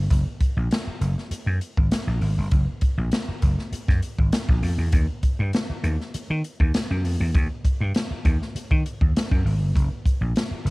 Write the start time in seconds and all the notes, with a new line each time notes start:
0.10 F#1, kick, closed hi-hat
0.41 kick, closed hi-hat
0.57 A#1
0.71 snare, closed hi-hat
0.87 muted slap bass stroke
1.01 F#1, closed hi-hat
1.18 snare
1.31 muted slap bass stroke, closed hi-hat
1.46 F#2
1.61 closed hi-hat
1.77 G#1, kick
1.92 snare, closed hi-hat
2.07 A#1
2.21 G#1, open hi-hat
2.38 G1
2.51 F#1, kick, closed hi-hat
2.81 kick, closed hi-hat
2.98 A#1
3.12 snare, closed hi-hat
3.28 muted slap bass stroke
3.42 F#1, kick, closed hi-hat
3.59 snare
3.72 muted slap bass stroke, closed hi-hat
3.88 F#2, kick, snare
4.02 closed hi-hat
4.19 G#1, kick
4.33 snare, closed hi-hat
4.49 A#1, kick
4.63 F2, open hi-hat
4.78 E2
4.92 D#2, kick, closed hi-hat
5.23 kick, closed hi-hat
5.39 G2
5.53 snare, closed hi-hat
5.70 muted slap bass stroke
5.83 D#2, closed hi-hat
6.00 snare
6.14 muted slap bass stroke, closed hi-hat
6.30 D#3
6.44 closed hi-hat
6.60 D#2, kick
6.74 snare, closed hi-hat
6.91 F#2
7.05 F2, open hi-hat
7.20 E2
7.35 D#2, kick, closed hi-hat
7.64 kick, closed hi-hat
7.81 G2
7.95 snare, closed hi-hat
8.11 muted slap bass stroke
8.25 D#2, kick, closed hi-hat
8.42 snare
8.55 muted slap bass stroke, closed hi-hat
8.71 D#3, kick
8.86 closed hi-hat
9.01 D#2, kick
9.17 snare, closed hi-hat
9.31 F#2, kick
9.45 G#1, open hi-hat
9.61 G1
9.76 F#1, kick, closed hi-hat
10.06 kick, closed hi-hat
10.21 A#1
10.36 snare, closed hi-hat
10.51 muted slap bass stroke
10.65 F#1, closed hi-hat